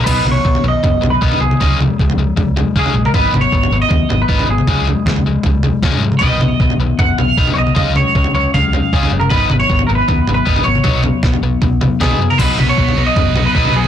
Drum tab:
CC |x---------------|----------------|----------------|----------------|
SD |----------------|----------------|----------------|----o-------o---|
T2 |--o------------o|--o------------o|--o------------o|----------o-o--o|
FT |o-o--o--o-o--o--|o-o--o--o-o--o--|o-o--o--o-o--o--|o-o--o--o-o--o--|
BD |o---o---o---o---|o---o---o---o---|o---o---o---o---|o---o---o---o---|

CC |----------------|----------------|----------------|----------------|
SD |----------------|----------------|----------------|----o-------o---|
T2 |--o------------o|--o------------o|--o------------o|----------o-o--o|
FT |o-o--o--o-o--o--|o-o--o--o-o--o--|o-o--o--o-o--o--|o-o--o--o-o--o--|
BD |o---o---o---o---|o---o---o---o---|o---o---o---o---|o---o---o---o---|

CC |x---------------|
SD |----------------|
T2 |--o------------o|
FT |o-o--o--o-o--o--|
BD |o---o---o---o---|